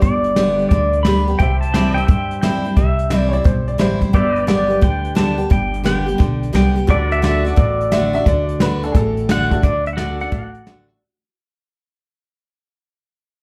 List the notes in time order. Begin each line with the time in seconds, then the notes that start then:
Already playing: G4 B4 D5
0.02 G1 G2 D5, kick, closed hi-hat
0.24 closed hi-hat
0.36 D3 G3 B3 G4, snare, closed hi-hat
0.59 closed hi-hat
0.69 D2 D3 D5, kick, closed hi-hat
0.93 closed hi-hat
1.03 D3 G3 B3 G4 B5, snare, closed hi-hat
1.28 B3 G4, closed hi-hat
1.39 C2 C3 G4 C5 E5 G5, kick, closed hi-hat
1.61 A5, closed hi-hat
1.74 E3 G3 C4 E4 G4 C5 D5, snare, closed hi-hat
1.94 C4 E4 G5, closed hi-hat
2.01 E5
2.07 G2 G5, kick, closed hi-hat
2.31 closed hi-hat
2.42 E3 G3 C4 E4 G5, snare, closed hi-hat
2.65 C4 E4, closed hi-hat
2.76 C2 C3 E5, kick, closed hi-hat
2.99 closed hi-hat
3.10 E3 G3 C4 E4, snare, closed hi-hat
3.19 D5
3.29 E4 C#5
3.33 C4 D5, closed hi-hat
3.44 B1 G2 C5, kick, closed hi-hat
3.68 D5, closed hi-hat
3.78 A1 E3 G3 C4 E4 C5, snare, closed hi-hat
4.01 C4 E4, kick, closed hi-hat
4.13 G1 G2 G4 B4 C5 D5 E5, kick, closed hi-hat
4.17 D5
4.35 B4, closed hi-hat
4.42 D5
4.47 D3 G3 B3 G4 D5, snare, closed hi-hat
4.69 B3 G4, closed hi-hat
4.81 D2 D3 G5, kick, closed hi-hat
5.05 closed hi-hat
5.15 D3 G3 B3 G4 A5, snare, closed hi-hat
5.38 B3 G4, closed hi-hat
5.50 G1 G2 G5, kick, closed hi-hat
5.74 closed hi-hat
5.84 D3 G3 B3 G4 G5, snare, closed hi-hat
6.06 B3 G4, closed hi-hat
6.18 B1 D3, kick, closed hi-hat
6.43 closed hi-hat
6.53 C2 D3 G3 B3 G4 G5, snare, closed hi-hat
6.75 B3 G4, closed hi-hat
6.87 D2 D3 F#4 A4 B4 D5, kick, closed hi-hat
6.91 D5
7.11 A4 E5, closed hi-hat
7.22 D3 A3 D4 F#4 E5, snare, closed hi-hat
7.44 D4 F#4 D5, closed hi-hat
7.56 A1 A2, kick, closed hi-hat
7.81 closed hi-hat
7.92 D3 A3 D4 F#4 E5, snare, closed hi-hat
8.13 D4 F#4 E5, closed hi-hat
8.26 D2 D3 D5, kick, closed hi-hat
8.49 closed hi-hat
8.60 D3 A3 D4 F#4 B4, snare, closed hi-hat
8.83 D4 F#4 A4, closed hi-hat
8.92 A1 A2 G#4, kick, closed hi-hat
8.96 A4
9.17 closed hi-hat
9.29 D3 A3 D4 F#4 F#5, snare, closed hi-hat
9.51 D4 F#4 A4 D5, kick, closed hi-hat
9.63 D2 D3 D5, kick, closed hi-hat
9.86 E5, closed hi-hat
9.93 F#4 F#5
9.98 D3 A3 D4 F#4 A4 D5, snare, closed hi-hat
10.20 D4 F#4 F#5, closed hi-hat
10.32 A1 A2, kick, closed hi-hat
10.54 closed hi-hat
10.66 D3 A3 D4 F#4, snare, closed hi-hat
10.90 D4